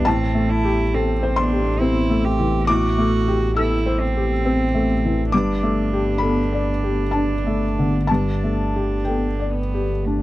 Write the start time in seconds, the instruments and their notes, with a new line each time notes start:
0.04 sub bass A1, felt piano A2 A5, cello C4
0.35 felt piano A3
0.50 cello E4
0.64 felt piano G4
0.94 cello C4, felt piano A4
1.23 felt piano C5
1.36 cello D4, felt piano C6
1.52 felt piano G4
1.80 felt piano C4, cello E4
2.10 felt piano A3
2.24 cello G4
2.40 felt piano E3
2.67 felt piano A2 D6, cello F#4
2.98 felt piano A3
3.28 felt piano G4
3.57 cello E4, felt piano A4 E6
3.86 felt piano C5
4.00 cello C4
4.17 felt piano G4
4.45 felt piano C4
4.74 felt piano A3
5.05 felt piano E3
5.32 sub bass G1, felt piano G2 D6, cello D4
5.63 felt piano A3
5.93 felt piano G4
6.18 felt piano B5
6.22 felt piano A4
6.53 felt piano D5
6.84 felt piano G4
7.11 felt piano D4 A5
7.47 felt piano A3
7.79 felt piano D3
8.07 felt piano G2 A5, cello D4
8.44 felt piano A3
8.76 felt piano G4
9.05 felt piano A4 G5
9.40 felt piano D5
9.54 cello B3
9.74 felt piano G4
10.04 cello A3, felt piano D4